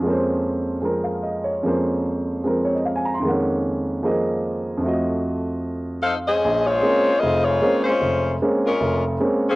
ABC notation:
X:1
M:4/4
L:1/16
Q:"Swing" 1/4=150
K:Bbm
V:1 name="Saxophone section"
z16 | z16 | z16 | z12 [E=Acf]2 [D_Ace]2- |
[DAce]2 [A,Fcd]6 [CFAe]2 [A,Fcd]4 [A,DFc]2- | [A,DFc]4 z2 [A,DFB]4 z4 [F,CDA]2 |]
V:2 name="Grand piano"
z8 z2 f2 e2 d2- | d z8 z d e f a b c' | z16 | z16 |
B,,,4 [A,B,CD]2 z2 F,,,4 [A,B,CD]2 z2 | F,,,4 [A,B,CD]2 z2 F,,,4 [A,B,CD]2 z2 |]
V:3 name="Grand piano"
[F,,F,A,B,Dc]8 [F,A,CB]8 | [F,,F,A,B,Dc]8 [F,A,CB]8 | [F,,E,A,B,Dg]8 [F,B,CAe]8 | [F,,F,=A,Ge]16 |
z16 | z16 |]